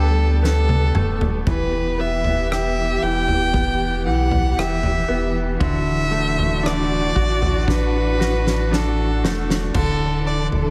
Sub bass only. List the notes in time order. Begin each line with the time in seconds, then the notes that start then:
Already playing: D2
0.95 D1
1.47 E1
3.03 E1
4.06 B1
4.57 E1
5.09 E1
5.61 D1
7.16 A1
9.23 E1
9.75 D1
10.53 D1